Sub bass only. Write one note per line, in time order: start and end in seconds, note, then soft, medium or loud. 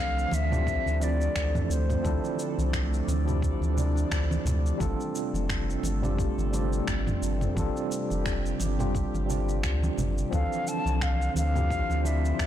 0.00 0.26 C2 medium
0.32 0.78 D2 medium
0.86 1.30 D2 medium
1.36 1.63 D2 medium
1.70 1.97 D2 medium
2.05 2.19 D2 loud
2.58 3.02 C2 medium
3.08 3.54 D2 medium
3.61 4.05 D2 medium
4.11 4.39 D2 medium
4.45 4.73 D2 medium
4.80 4.95 G1 loud
5.34 5.78 F1 medium
5.83 6.30 G1 medium
6.38 6.82 G1 loud
6.88 7.15 G1 medium
7.22 7.49 G1 medium
7.56 7.71 G1 loud
8.11 8.54 F1 medium
8.60 9.06 G1 medium
9.13 9.65 G1 medium
9.63 9.90 D2 loud
9.97 10.25 G1 medium
10.32 10.47 D2 loud
10.85 11.29 C2 medium
11.35 11.82 D2 medium
11.90 12.33 D2 medium
12.39 12.47 D2 medium